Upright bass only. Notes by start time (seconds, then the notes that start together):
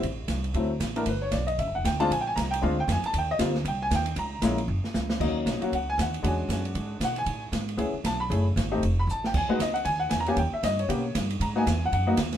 0.03 A1
0.28 C2
0.54 D2
0.80 A1
1.06 G1
1.32 B1
1.59 A1
1.67 G1
1.76 E1
1.85 D2
2.11 A#1
2.37 C2
2.63 D2
2.88 F2
3.03 muted upright bass stroke
3.14 D#2
3.39 D2
3.65 C2
3.91 D#2
4.16 C#2
4.42 A#1
4.68 F#1
4.84 muted upright bass stroke
4.95 C#2
5.21 D#2
5.46 B1
5.62 muted upright bass stroke
5.72 C#2
5.98 D#2
6.24 E2
6.49 F#2
6.75 G#2
7.00 B2
7.26 A2
7.52 G#2
7.78 C#2
7.93 muted upright bass stroke
8.04 B1
8.30 F#1
8.56 G#1
8.82 F1
9.07 A1
9.34 E2
9.49 muted upright bass stroke
9.59 C#2
9.85 D#2
10.11 E2
10.37 D#2
10.53 muted upright bass stroke
10.63 G2
10.89 B2
11.15 G2
11.40 G#2
11.66 E2
11.92 F#2
12.18 D#2